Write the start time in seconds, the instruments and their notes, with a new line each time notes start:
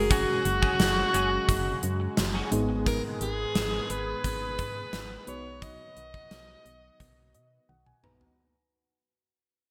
Already playing: fm bass F#1, analog synth pad C#3 F#3 G#3 F#4, fm electric piano G#3 C#4 F#4 G#4, alto saxophone G#4
0.10 clean electric guitar C#4 F#4 G#4, alto saxophone F#4, kick, closed hi-hat
0.45 fm bass F#1, muted clean electric guitar stroke, closed hi-hat
0.62 clean electric guitar C#4 F#4 G#4, kick
0.79 fm bass F#1, snare, closed hi-hat
0.97 muted clean electric guitar stroke
1.13 fm bass F#1, clean electric guitar C#4 F#4 G#4, closed hi-hat
1.31 muted clean electric guitar stroke
1.48 fm bass F#1, muted clean electric guitar stroke, kick, closed hi-hat
1.65 muted clean electric guitar stroke
1.83 fm bass F#2, closed hi-hat
2.00 muted clean electric guitar stroke
2.17 fm bass F#1, muted clean electric guitar stroke, snare, closed hi-hat
2.34 clean electric guitar C#4 F#4 G#4
2.51 fm bass G#1, fm electric piano G#2 G#3 B3 D#4 G#4, analog synth pad D#3 B3 G#4, closed hi-hat
2.69 muted clean electric guitar stroke
2.86 alto saxophone A#4, kick, closed hi-hat
3.21 fm bass G#1, alto saxophone G#4, closed hi-hat
3.55 fm bass G#1, snare, closed hi-hat
3.90 fm bass G#1, alto saxophone B4, closed hi-hat
4.24 fm bass G#1, kick, closed hi-hat
4.59 fm bass G#2, kick, closed hi-hat
4.93 fm bass G#1, snare, closed hi-hat
5.27 fm bass B1, fm electric piano B2 B3 D#4 F#4 B4, analog synth pad F#3 F#4, alto saxophone C#5, closed hi-hat
5.62 alto saxophone D#5, kick, closed hi-hat
5.97 fm bass B1, closed hi-hat
6.14 kick
6.31 fm bass B1, snare, closed hi-hat
6.66 fm bass B1, closed hi-hat
7.00 fm bass B1, kick, closed hi-hat
7.34 fm bass B2, fm electric piano D#5, closed hi-hat
7.69 fm bass B1, fm electric piano F#5, high tom
7.86 fm electric piano G#5, mid tom
8.03 fm bass A#1, fm electric piano B3 D#4 F#4 B4 A#5, mid tom
8.21 floor tom